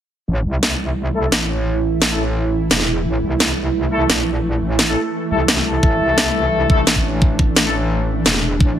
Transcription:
0.28 wobble bass A1, synth drone E3 A3 E4
0.45 wobble bass C2
0.63 snare
1.15 brass ensemble A3 E4 A4
1.32 wobble bass A1, snare
2.02 snare
2.10 brass ensemble A3 E4 A4
2.71 wobble bass E1, snare
2.80 snare
3.06 wobble bass A1
3.23 wobble bass C2
3.40 snare
3.92 brass ensemble A3 E4 A4
4.10 wobble bass A#1, snare
4.62 wobble bass A1
4.79 snare
4.88 brass ensemble A3 E4 A4
5.31 wobble bass C2, brass ensemble A3 E4 A4
5.48 snare
5.57 brass ensemble A3 E4 A4, snare
5.83 wobble bass A1, synth drone D4, kick
6.00 wobble bass C2
6.18 snare
6.70 brass ensemble A3 E4 A4, kick
6.87 wobble bass A1, snare
6.96 kick
7.22 kick
7.39 kick
7.56 snare
7.65 brass ensemble A3 E4 A4
8.26 wobble bass E1, snare
8.34 snare
8.60 wobble bass A1, kick

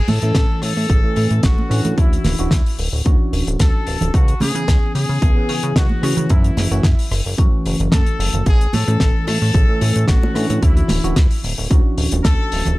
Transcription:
0.08 analog synth bass A2, trumpet section A4, open hi-hat, high conga, low conga
0.22 analog synth bass A2, tine electric piano E3 A3 C#4 A4, closed hi-hat
0.35 analog synth bass A1, kick, snare, closed hi-hat
0.62 analog synth bass A2, trumpet section A4, cross-stick, open hi-hat
0.77 analog synth bass A2
0.89 analog synth bass A1, tine electric piano E3 A3 C#4 G#4, kick, closed hi-hat
1.03 tine electric piano E3 A3 C#4 A4
1.16 analog synth bass A2, open hi-hat
1.31 analog synth bass A2, closed hi-hat
1.43 analog synth bass A1, trumpet section F#4, kick, snare, closed hi-hat
1.58 high conga
1.69 analog synth bass A2, tine electric piano E3 C#4 D4 F#4, cross-stick, open hi-hat
1.85 analog synth bass A2, closed hi-hat, low conga
1.98 analog synth bass D2, trumpet section E4, kick, closed hi-hat
2.13 closed hi-hat
2.24 analog synth bass D1, snare, open hi-hat, high conga, low conga
2.38 analog synth bass D1, tine electric piano E3 C#4 D4 F#4, closed hi-hat
2.51 analog synth bass D2, kick, snare, closed hi-hat
2.66 open hi-hat
2.79 analog synth bass D1, open hi-hat
2.93 analog synth bass D1
3.05 analog synth bass D2, tine electric piano E3 C#4 D4 F#4, kick, closed hi-hat
3.33 analog synth bass D1, open hi-hat
3.47 analog synth bass D1, closed hi-hat
3.59 analog synth bass D2, trumpet section A4, kick, cross-stick, snare, closed hi-hat, high conga
3.87 analog synth bass D1, open hi-hat
4.01 analog synth bass D1, closed hi-hat, low conga
4.14 analog synth bass C#2, trumpet section F#4, kick, closed hi-hat
4.28 closed hi-hat
4.40 analog synth bass C#3, trumpet section G#4, open hi-hat, high conga, low conga
4.54 analog synth bass C#3, tine electric piano E3 B3 C#4 G#4, closed hi-hat
4.68 analog synth bass C#2, kick, snare, closed hi-hat
4.95 analog synth bass C#3, trumpet section G#4, open hi-hat
5.09 analog synth bass C#3
5.21 analog synth bass C#2, tine electric piano E3 B3 C#4 G#4, kick, closed hi-hat
5.35 tine electric piano E3 B3 C#4 G#4
5.49 analog synth bass C#3, open hi-hat
5.63 analog synth bass C#3, closed hi-hat
5.76 analog synth bass C#2, trumpet section F#4, kick, snare, closed hi-hat
5.89 high conga
6.02 analog synth bass C#3, tine electric piano E3 A3 C#4 F#4, cross-stick, open hi-hat
6.17 analog synth bass C#3, closed hi-hat, low conga
6.29 analog synth bass F#2, trumpet section E4, kick, closed hi-hat
6.44 closed hi-hat
6.57 analog synth bass F#1, snare, open hi-hat, high conga, low conga
6.71 analog synth bass F#1, tine electric piano E3 A3 C#4 F#4, closed hi-hat
6.83 analog synth bass F#2, kick, snare, closed hi-hat
6.99 open hi-hat
7.11 analog synth bass F#1, cross-stick, open hi-hat
7.25 analog synth bass F#1
7.37 analog synth bass F#2, tine electric piano E3 A3 C#4 F#4, kick, closed hi-hat
7.65 analog synth bass F#1, open hi-hat
7.80 analog synth bass F#1, closed hi-hat
7.92 analog synth bass F#2, trumpet section A4, kick, cross-stick, snare, closed hi-hat, high conga
8.06 closed hi-hat
8.19 analog synth bass F#1, open hi-hat
8.33 analog synth bass F#1, closed hi-hat, low conga
8.46 analog synth bass A1, trumpet section G#4, kick, closed hi-hat
8.61 closed hi-hat
8.73 analog synth bass A2, trumpet section A4, open hi-hat, high conga, low conga
8.87 analog synth bass A2, tine electric piano E3 A3 C#4 A4, closed hi-hat, high bongo
9.00 analog synth bass A1, kick, snare, closed hi-hat
9.27 analog synth bass A2, trumpet section A4, cross-stick, open hi-hat, high bongo
9.42 analog synth bass A2
9.54 analog synth bass A1, tine electric piano E3 A3 C#4 G#4, kick, closed hi-hat
9.67 tine electric piano E3 A3 C#4 A4
9.81 analog synth bass A2, open hi-hat, high bongo
9.96 analog synth bass A2, closed hi-hat
10.08 analog synth bass A1, trumpet section F#4, kick, snare, closed hi-hat
10.23 high bongo, high conga
10.34 analog synth bass A2, tine electric piano E3 C#4 D4 F#4, cross-stick, open hi-hat
10.50 analog synth bass A2, closed hi-hat, low conga
10.62 analog synth bass D2, trumpet section E4, kick, closed hi-hat
10.77 closed hi-hat, high bongo
10.88 analog synth bass D1, snare, open hi-hat, high conga, low conga
11.03 analog synth bass D1, tine electric piano E3 C#4 D4 F#4, closed hi-hat
11.16 analog synth bass D2, kick, snare, closed hi-hat, high bongo
11.31 open hi-hat
11.44 analog synth bass D1, open hi-hat
11.58 analog synth bass D1
11.70 analog synth bass D2, tine electric piano E3 C#4 D4 F#4, kick, closed hi-hat, high bongo
11.98 analog synth bass D1, open hi-hat
12.11 analog synth bass D1, closed hi-hat, high bongo
12.24 analog synth bass D2, trumpet section A4, kick, cross-stick, snare, closed hi-hat, high conga
12.52 analog synth bass D1, open hi-hat
12.65 analog synth bass D1, closed hi-hat, high bongo, low conga

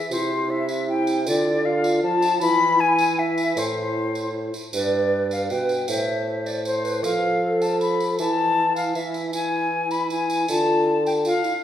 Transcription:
Already playing: flute E5
0.11 bassoon C3, recorder F4, flute C5, tambourine
0.16 recorder E4
0.50 recorder E4, flute E5
0.69 tambourine
0.89 recorder E4, flute G5
1.07 tambourine
1.27 bassoon D3, recorder F4, flute D5, tambourine
1.65 recorder F4, flute F5
1.84 tambourine
2.03 bassoon F3, recorder F4, flute A5
2.22 tambourine
2.40 bassoon E3, recorder E4, flute B5, tambourine
2.79 recorder E4, flute G#5
2.98 tambourine
3.18 recorder E4, flute E5
3.37 tambourine
3.56 bassoon A2, recorder E4, flute C5, tambourine
4.15 tambourine
4.54 tambourine
4.73 bassoon G2, recorder B4, flute D5, tambourine
5.31 flute F5, tambourine
5.50 bassoon B2, recorder B4, flute G5, tambourine
5.69 tambourine
5.88 bassoon A2, recorder C5, flute E5, tambourine
6.46 flute D5, tambourine
6.65 recorder C5, flute C5, tambourine
6.84 recorder B4, tambourine
7.03 bassoon F3, recorder A4, flute F5, tambourine
7.62 flute A5, tambourine
7.81 flute B5, tambourine
8.00 tambourine
8.19 bassoon E3, recorder E4, flute A5, tambourine
8.76 flute F5, tambourine
8.95 bassoon E3, recorder E4, flute E5, tambourine
9.14 tambourine
9.33 recorder E4, flute G#5, tambourine
9.91 flute B5, tambourine
10.10 recorder E4, flute G#5, tambourine
10.30 tambourine
10.48 bassoon D3, recorder F4, flute A5, tambourine
11.06 flute G5, tambourine
11.25 recorder F4, flute F5, tambourine
11.44 recorder E4, tambourine

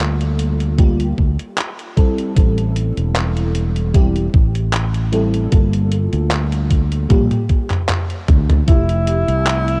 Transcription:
Already playing: fretless electric bass D2, fm electric piano G3 A#3 F4 A4
0.00 clap, closed hi-hat
0.21 closed hi-hat
0.39 closed hi-hat
0.60 closed hi-hat
0.78 fm electric piano G3 A#3 F4 G4, kick, closed hi-hat
1.00 closed hi-hat
1.18 fretless electric bass D2, kick
1.39 closed hi-hat
1.58 clap, closed hi-hat
1.79 closed hi-hat
1.96 fm electric piano G3 C4 E4 A4, kick, closed hi-hat
2.18 closed hi-hat
2.35 fretless electric bass A1, fm electric piano G3 C4 E4 A4, kick, closed hi-hat
2.58 closed hi-hat
2.76 closed hi-hat
2.97 fretless electric bass E1, closed hi-hat
3.16 clap, closed hi-hat
3.37 closed hi-hat
3.55 closed hi-hat
3.76 closed hi-hat
3.94 fm electric piano G3 C4 E4 G4, kick, closed hi-hat
4.16 closed hi-hat
4.34 fretless electric bass A1, kick
4.55 closed hi-hat
4.73 clap, closed hi-hat
4.94 closed hi-hat
5.12 fm electric piano G3 C4 E4 A4, closed hi-hat
5.34 closed hi-hat
5.50 fretless electric bass G1, fm electric piano G3 A#3 F4 A4, kick, closed hi-hat
5.73 closed hi-hat
5.92 closed hi-hat
6.13 fretless electric bass D2, closed hi-hat
6.31 clap, closed hi-hat
6.52 closed hi-hat
6.71 kick, closed hi-hat
6.92 closed hi-hat
7.09 fretless electric bass A#1, fm electric piano G3 A#3 F4 G4, kick, closed hi-hat, high tom
7.31 closed hi-hat, high tom
7.49 kick, closed hi-hat
7.70 clap, closed hi-hat, mid tom
7.89 clap, closed hi-hat, mid tom
8.10 closed hi-hat
8.28 fretless electric bass D2, kick, closed hi-hat, mid tom
8.50 closed hi-hat, mid tom
8.66 fretless electric bass F1, fm electric piano F3 A3 E4 G4, tenor saxophone E4, kick, closed hi-hat
8.89 closed hi-hat
9.07 closed hi-hat
9.28 fretless electric bass C2, closed hi-hat
9.47 clap, closed hi-hat
9.68 closed hi-hat

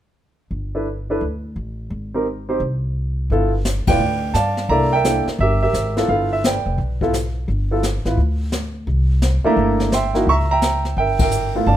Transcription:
0.51 upright bass G1
0.75 grand piano D4 E4 A4 B4
1.10 grand piano D4 E4 A4 B4
1.21 upright bass D2
1.56 upright bass A1
1.90 upright bass G#1
2.14 grand piano C4 D#4 G4 A#4
2.49 grand piano C4 D#4 G4 C5
2.60 upright bass C2
3.30 upright bass G1, grand piano B3 E4 F4 A4, brush sweep, kick
3.65 snare, hi-hat pedal
3.87 upright bass F1, grand piano B3 E4 F4 B4 D5 G5, kick, ride
3.99 upright bass D2, brush sweep
4.34 upright bass G2, grand piano D5 F5 A5, snare, hi-hat pedal
4.57 snare
4.69 upright bass C2, grand piano A#3 D4 E4 A4 D5 E5 A#5, brush sweep, kick
4.93 grand piano A#4 E5 G5
5.04 grand piano A#3 D4 E4 A4, snare, hi-hat pedal
5.26 muted upright bass stroke, snare
5.39 upright bass G1, grand piano G4 A#4 E5, brush sweep, kick
5.63 grand piano G4 A#4 E5
5.73 upright bass G#1, snare, hi-hat pedal
5.97 grand piano B3 E4 F4 A4, snare
6.08 upright bass G1, grand piano A4 B4 F5, brush sweep, kick
6.33 grand piano E5
6.44 grand piano B4 D5 G5, snare, hi-hat pedal
6.66 upright bass F1
6.78 upright bass B1, brush sweep, kick
7.01 grand piano B3 E4 F4 A4, kick
7.14 snare, hi-hat pedal
7.48 upright bass G1, brush sweep, kick
7.71 grand piano B3 E4 F4 A4
7.83 snare, hi-hat pedal
8.05 upright bass G#1, grand piano B3 E4 F4 B4, snare
8.17 upright bass D2, brush sweep, kick
8.52 snare, hi-hat pedal
8.87 upright bass C2, brush sweep, kick
9.22 snare, hi-hat pedal
9.44 grand piano A3 A#3 D4 E4 D5 E5 A#5, muted upright bass stroke
9.56 upright bass G1, brush sweep, kick
9.80 snare
9.92 grand piano E5 G5 C6, snare, hi-hat pedal
10.14 grand piano A#3 D#4 E4 F#4, snare
10.26 upright bass C#2, grand piano E5 A#5 C#6, brush sweep, kick
10.51 grand piano E5 G5 A#5
10.62 snare, hi-hat pedal
10.85 snare
10.97 upright bass G1, grand piano A#4 E5 G5, brush sweep, kick
11.19 grand piano E5 G5, kick, ride
11.23 grand piano A#4
11.31 hi-hat pedal
11.55 grand piano A3 B3 E4 F4
11.66 upright bass G1, grand piano D5 F5 A5, brush sweep, kick

